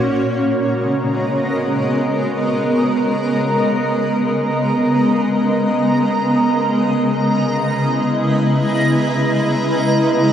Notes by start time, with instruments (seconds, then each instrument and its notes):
Already playing: ambient pad C#4 F#4 C#5
0.10 ambient pad C#3, synth texture A#5
0.17 ambient pad G#3 B3
0.27 ambient pad A#4
0.41 ambient pad D#5
7.18 ambient pad E4
7.51 ambient pad B4